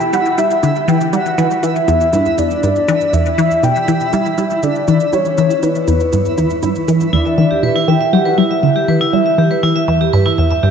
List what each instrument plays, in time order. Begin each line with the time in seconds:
Already playing: synth texture E4, soft synth lead G5
0.01 cabasa
0.13 synth arpeggio sound G3, soft synth lead F#5, low bongo, cabasa
0.26 cabasa
0.38 synth arpeggio sound G3, soft synth lead E5, low bongo, cabasa
0.51 cabasa
0.63 synth arpeggio sound D3, low bongo, cabasa
0.76 cabasa
0.88 synth arpeggio sound E3, soft synth lead G5, low bongo, cabasa
1.01 cabasa
1.13 synth arpeggio sound G3, soft synth lead F#5, low bongo, cabasa
1.26 cabasa
1.38 synth arpeggio sound E3, low bongo, cabasa
1.51 cabasa
1.63 synth arpeggio sound E3, soft synth lead E5, low bongo, cabasa
1.76 cabasa
1.88 synth arpeggio sound E2, low bongo, cabasa
2.01 cabasa
2.13 synth arpeggio sound G2, low bongo, cabasa
2.26 cabasa
2.38 synth arpeggio sound E2, soft synth lead D5, low bongo, cabasa
2.51 cabasa
2.63 synth arpeggio sound G2, low bongo, cabasa
2.76 cabasa
2.88 synth arpeggio sound E3, low bongo, cabasa
3.01 cabasa
3.13 synth arpeggio sound E2, soft synth lead E5, low bongo, cabasa
3.26 cabasa
3.38 synth arpeggio sound E3, low bongo, cabasa
3.51 cabasa
3.63 synth arpeggio sound B2, soft synth lead G5, low bongo, cabasa
3.76 cabasa
3.88 synth arpeggio sound E3, low bongo, cabasa
4.00 cabasa
4.13 synth arpeggio sound G3, soft synth lead E5, low bongo, cabasa
4.26 cabasa
4.38 synth arpeggio sound G3, low bongo, cabasa
4.50 cabasa
4.63 synth arpeggio sound D3, soft synth lead D5, low bongo, cabasa
4.75 cabasa
4.88 synth arpeggio sound E3, low bongo, cabasa
5.00 cabasa
5.13 synth arpeggio sound G3, soft synth lead C#5, low bongo, cabasa
5.25 cabasa
5.38 synth arpeggio sound E3, low bongo, cabasa
5.50 cabasa
5.63 synth arpeggio sound E3, soft synth lead B4, low bongo, cabasa
5.75 cabasa
5.88 synth arpeggio sound E2, low bongo, cabasa
6.00 cabasa
6.13 synth arpeggio sound G2, low bongo, cabasa
6.25 cabasa
6.38 synth arpeggio sound E2, low bongo, cabasa
6.50 cabasa
6.63 synth arpeggio sound G2, low bongo, cabasa
6.75 cabasa
6.88 synth arpeggio sound E3, low bongo, cabasa
7.00 cabasa
7.13 synth arpeggio sound E2, vibraphone E4, soft synth lead D5
7.26 vibraphone E5
7.38 synth arpeggio sound E3, vibraphone E5
7.51 vibraphone G4
7.63 synth arpeggio sound B2, vibraphone B4, soft synth lead E5
7.76 vibraphone E4
7.88 synth arpeggio sound E3, vibraphone E5, soft synth lead G5
8.01 vibraphone E5
8.13 synth arpeggio sound G3, vibraphone G4, soft synth lead F#5
8.26 vibraphone B4
8.38 synth arpeggio sound G3, vibraphone E4, soft synth lead E5
8.51 vibraphone E5
8.63 synth arpeggio sound D3, vibraphone E5
8.76 vibraphone G4
8.88 synth arpeggio sound E3, vibraphone B4
9.01 vibraphone E4
9.13 synth arpeggio sound G3, soft synth lead E5, vibraphone E5
9.26 vibraphone E5
9.38 synth arpeggio sound E3, vibraphone G4
9.51 vibraphone B4
9.63 synth arpeggio sound E3, vibraphone E4
9.76 vibraphone E5
9.88 synth arpeggio sound E2, vibraphone E5
10.01 vibraphone G4
10.13 synth arpeggio sound G2, vibraphone B4
10.26 vibraphone E4
10.38 synth arpeggio sound E2, vibraphone E5
10.51 vibraphone E5
10.63 synth arpeggio sound G2, vibraphone G4